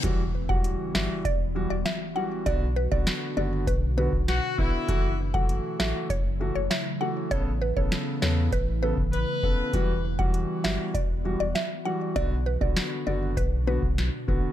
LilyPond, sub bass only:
\new Staff \with { instrumentName = "Sub bass" } { \clef bass \time 4/4 \key e \dorian \tempo 4 = 99 e,,4~ e,,16 r16 g,,16 r16 e,,8. e,,16 r4 | b,,8. b,,16 r8 fis,,8 b,,8. b,,8 r16 a,,16 r16 | fis,,4~ fis,,16 r16 a,,16 r16 fis,,8. fis,,16 r4 | a,,8. a,,16 r8 e,8 a,,8. a,,8 r16 g,,16 r16 |
e,,4~ e,,16 r16 g,,16 r16 e,,8. e,,16 r4 | b,,8. b,,16 r8 fis,,8 b,,8. b,,8 r16 a,,16 r16 | }